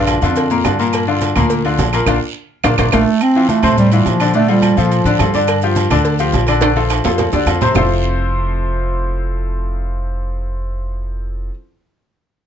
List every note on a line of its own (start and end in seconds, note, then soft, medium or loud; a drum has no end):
0.00 0.16 A#1 medium
0.00 0.20 G2 loud
0.00 0.17 D3 medium
0.00 0.17 D4 medium
0.00 0.17 F4 medium
0.07 cowbell medium
0.07 high conga medium
0.07 low timbale medium
0.07 low agogo loud
0.07 short guiro medium
0.07 claves medium
0.07 maracas medium
0.21 0.74 F2 medium
0.21 0.62 F2 loud
0.21 0.45 D3 medium
0.21 0.46 D4 medium
0.21 0.46 F4 medium
0.21 cowbell medium
0.21 short guiro medium
0.21 maracas soft
0.36 cowbell loud
0.36 high conga soft
0.36 low agogo medium
0.36 long guiro medium
0.36 maracas medium
0.50 0.62 A#2 medium
0.50 0.62 A#3 medium
0.50 0.63 A#4 medium
0.50 high conga soft
0.50 maracas medium
0.64 1.30 G2 medium
0.64 0.76 D3 medium
0.64 0.77 D4 medium
0.64 0.77 F4 medium
0.64 cowbell medium
0.64 high conga loud
0.64 low timbale medium
0.64 low agogo loud
0.64 short guiro medium
0.64 claves medium
0.64 maracas medium
0.79 1.03 A#2 loud
0.79 1.03 A#3 medium
0.79 1.03 A#4 medium
0.79 short guiro medium
0.79 maracas soft
0.93 cowbell loud
0.93 high conga soft
0.93 low agogo loud
0.93 long guiro medium
0.93 claves medium
0.93 maracas medium
1.08 1.31 D3 medium
1.08 1.31 D4 medium
1.08 1.31 F4 medium
1.08 high conga soft
1.21 cowbell medium
1.21 high conga loud
1.21 low timbale medium
1.21 low agogo medium
1.21 short guiro medium
1.21 maracas medium
1.36 1.76 D2 loud
1.36 1.60 A#2 medium
1.36 1.60 A#3 loud
1.36 1.60 A#4 loud
1.36 cowbell medium
1.36 high conga soft
1.36 low conga medium
1.36 low agogo loud
1.36 short guiro medium
1.36 claves medium
1.36 maracas soft
1.50 cowbell loud
1.50 long guiro medium
1.50 maracas medium
1.65 1.88 D3 medium
1.65 1.88 D4 medium
1.65 1.88 F4 medium
1.65 high conga soft
1.65 low agogo medium
1.79 2.05 A#1 medium
1.79 cowbell medium
1.79 high conga medium
1.79 low timbale medium
1.79 low agogo medium
1.79 short guiro medium
1.79 maracas medium
1.93 2.05 A#2 medium
1.93 2.05 A#3 medium
1.93 2.05 A#4 medium
1.93 cowbell medium
1.93 low agogo loud
1.93 short guiro medium
1.93 claves medium
1.93 maracas soft
2.06 2.17 A#1 medium
2.06 2.17 A#3 loud
2.06 2.17 D4 loud
2.06 2.17 F4 loud
2.06 cowbell loud
2.06 high conga loud
2.06 high timbale loud
2.06 long guiro loud
2.06 claves loud
2.06 maracas loud
2.64 2.74 A#1 loud
2.64 2.73 A#3 loud
2.64 2.73 D4 loud
2.64 2.73 F4 loud
2.64 cowbell loud
2.64 high conga loud
2.64 high timbale loud
2.64 long guiro loud
2.64 claves loud
2.64 maracas loud
2.78 2.89 A#1 loud
2.78 2.88 A#3 medium
2.78 2.88 D4 medium
2.78 2.88 F4 loud
2.78 cowbell loud
2.78 high conga loud
2.78 high timbale loud
2.78 long guiro loud
2.78 claves loud
2.78 maracas loud
2.92 3.03 A#1 medium
2.92 3.24 A3 loud
2.92 3.02 A#3 loud
2.92 3.01 D4 loud
2.92 3.02 F4 loud
2.92 cowbell loud
2.92 high conga loud
2.92 high timbale loud
2.92 long guiro loud
2.92 claves loud
2.92 maracas loud
3.21 3.49 C4 loud
3.21 high conga soft
3.21 low agogo loud
3.21 long guiro medium
3.21 claves medium
3.21 maracas medium
3.35 3.59 E3 medium
3.35 3.59 E4 medium
3.35 3.59 F4 medium
3.35 high conga soft
3.49 3.76 A3 loud
3.49 high conga medium
3.49 low timbale medium
3.49 low agogo medium
3.49 short guiro medium
3.49 maracas medium
3.63 4.03 A2 loud
3.63 3.87 C3 loud
3.63 3.87 C4 loud
3.63 3.87 C5 medium
3.63 high conga soft
3.63 low conga medium
3.63 low agogo loud
3.63 short guiro medium
3.63 claves medium
3.63 maracas soft
3.78 3.91 G3 loud
3.78 high conga soft
3.78 low conga medium
3.78 long guiro medium
3.78 maracas medium
3.92 4.16 E3 medium
3.92 4.10 G3 medium
3.92 4.16 E4 medium
3.92 4.16 F4 medium
3.92 low agogo medium
3.92 maracas medium
4.05 4.71 A#2 medium
4.05 4.35 F3 medium
4.05 high conga medium
4.05 low timbale medium
4.05 low agogo medium
4.05 short guiro medium
4.05 maracas medium
4.20 4.32 D3 medium
4.20 4.32 D4 medium
4.20 4.32 D5 medium
4.20 low agogo loud
4.20 short guiro medium
4.20 claves medium
4.20 maracas soft
4.34 4.46 D3 medium
4.34 4.48 A3 loud
4.34 4.46 D4 medium
4.34 4.47 D5 medium
4.34 high conga soft
4.34 long guiro medium
4.34 maracas medium
4.48 4.72 F3 medium
4.48 4.75 G3 loud
4.48 4.72 F4 medium
4.48 4.72 A4 medium
4.48 high conga soft
4.48 low agogo medium
4.62 high conga medium
4.62 low timbale medium
4.62 low agogo loud
4.62 short guiro medium
4.62 claves medium
4.62 maracas medium
4.76 5.04 A#2 loud
4.76 5.00 F3 medium
4.76 5.31 F3 medium
4.76 5.01 F4 medium
4.76 5.01 A4 medium
4.76 high conga soft
4.76 short guiro medium
4.76 maracas soft
4.91 low agogo medium
4.91 long guiro medium
4.91 maracas medium
5.05 5.18 A2 medium
5.05 5.17 D3 medium
5.05 5.17 D4 medium
5.05 5.18 D5 medium
5.05 maracas medium
5.19 5.85 G2 loud
5.19 5.32 F3 medium
5.19 5.32 F4 medium
5.19 5.32 A4 medium
5.19 high conga loud
5.19 low timbale medium
5.19 low agogo loud
5.19 short guiro medium
5.19 claves medium
5.19 maracas medium
5.34 5.58 D3 medium
5.34 5.58 D4 medium
5.34 5.58 D5 medium
5.34 high conga medium
5.34 short guiro medium
5.34 maracas soft
5.48 cowbell loud
5.48 high conga soft
5.48 low agogo loud
5.48 long guiro medium
5.48 claves medium
5.48 maracas medium
5.62 5.86 F3 medium
5.62 5.86 F4 medium
5.62 5.86 G4 medium
5.62 high conga soft
5.62 maracas medium
5.76 cowbell medium
5.76 high conga medium
5.76 low timbale medium
5.76 low agogo medium
5.76 short guiro medium
5.76 maracas medium
5.90 6.30 D2 loud
5.90 6.14 D3 loud
5.90 6.14 D4 loud
5.90 6.15 D5 loud
5.90 cowbell medium
5.90 high conga soft
5.90 low conga medium
5.90 low agogo loud
5.90 short guiro medium
5.90 claves medium
5.90 maracas soft
6.05 cowbell loud
6.05 long guiro medium
6.05 maracas medium
6.19 6.43 F3 medium
6.19 6.43 F4 medium
6.19 6.43 G4 medium
6.19 high conga soft
6.19 low agogo medium
6.19 maracas medium
6.32 6.99 A#1 medium
6.32 cowbell medium
6.32 high conga medium
6.32 low timbale medium
6.32 low agogo medium
6.32 short guiro medium
6.32 maracas medium
6.47 6.60 D3 medium
6.47 6.60 D4 loud
6.47 6.60 D5 loud
6.47 cowbell medium
6.47 low agogo loud
6.47 short guiro medium
6.47 claves medium
6.47 maracas soft
6.61 6.74 D3 medium
6.61 6.74 D4 medium
6.61 6.74 D5 medium
6.61 cowbell loud
6.61 high conga loud
6.61 high timbale loud
6.61 long guiro medium
6.61 maracas medium
6.76 6.99 F3 medium
6.76 7.00 F4 medium
6.76 7.00 A4 medium
6.76 high conga medium
6.76 high timbale medium
6.76 low agogo medium
6.90 cowbell medium
6.90 high timbale medium
6.90 low agogo loud
6.90 short guiro medium
6.90 claves medium
6.90 maracas medium
7.04 7.31 F2 loud
7.04 7.28 F3 medium
7.04 7.28 F4 medium
7.04 7.28 A4 medium
7.04 cowbell medium
7.04 low timbale loud
7.04 short guiro medium
7.04 maracas soft
7.18 cowbell loud
7.18 low conga medium
7.18 low timbale loud
7.18 low agogo medium
7.18 long guiro medium
7.18 maracas medium
7.32 7.46 E2 medium
7.32 7.45 D3 medium
7.32 7.45 D4 medium
7.32 7.45 D5 medium
7.32 low timbale medium
7.32 maracas medium
7.46 7.72 F2 medium
7.46 7.58 F3 medium
7.46 7.59 F4 medium
7.46 7.59 A4 medium
7.46 cowbell medium
7.46 low timbale medium
7.46 low agogo loud
7.46 short guiro medium
7.46 claves medium
7.46 maracas medium
7.61 7.73 C3 medium
7.61 7.73 C4 medium
7.61 7.73 C5 medium
7.61 low conga loud
7.61 low timbale loud
7.61 short guiro medium
7.61 maracas soft
7.75 11.48 F1 medium
7.75 11.49 F3 loud
7.75 11.49 C4 medium
7.75 11.49 E4 medium
7.75 11.49 F4 medium
7.75 11.49 A4 medium
7.75 11.49 C5 loud
7.75 low bongo loud
7.75 low conga loud
7.75 low timbale loud
7.75 long guiro loud
7.75 claves loud
7.75 maracas loud